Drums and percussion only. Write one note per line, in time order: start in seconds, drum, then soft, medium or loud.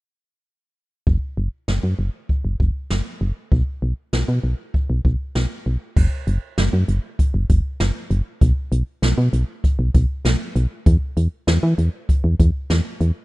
1.07 kick loud
1.68 snare loud
2.29 kick medium
2.60 kick medium
2.90 snare loud
3.52 kick loud
4.13 snare loud
4.74 kick medium
5.05 kick medium
5.35 snare loud
5.97 kick loud
5.97 crash loud
6.27 closed hi-hat medium
6.58 snare loud
6.58 closed hi-hat medium
6.88 closed hi-hat medium
7.19 kick medium
7.19 closed hi-hat medium
7.49 kick loud
7.49 closed hi-hat medium
7.80 snare loud
7.80 closed hi-hat medium
8.10 closed hi-hat medium
8.41 kick loud
8.41 closed hi-hat medium
8.72 closed hi-hat medium
9.03 snare loud
9.03 closed hi-hat medium
9.33 closed hi-hat medium
9.64 kick medium
9.64 closed hi-hat medium
9.94 kick loud
9.94 closed hi-hat medium
10.25 snare loud
10.25 closed hi-hat medium
10.55 closed hi-hat medium
10.86 kick loud
10.86 closed hi-hat medium
11.17 closed hi-hat medium
11.48 snare loud
11.48 closed hi-hat medium
11.78 closed hi-hat medium
12.09 kick medium
12.09 closed hi-hat medium
12.39 kick loud
12.39 closed hi-hat medium
12.70 snare loud
12.70 closed hi-hat medium
13.00 closed hi-hat medium